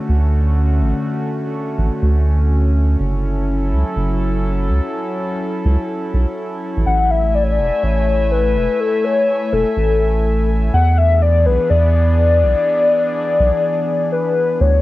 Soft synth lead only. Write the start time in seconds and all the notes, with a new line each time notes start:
6.86 F#5
7.11 E5
7.34 D5
7.43 C#5
7.51 D5
7.83 C#5
8.31 B4
8.80 A4
9.04 C#5
9.52 A4
10.73 F#5
10.98 E5
11.22 D5
11.46 B4
11.70 D5
14.12 B4
14.61 C#5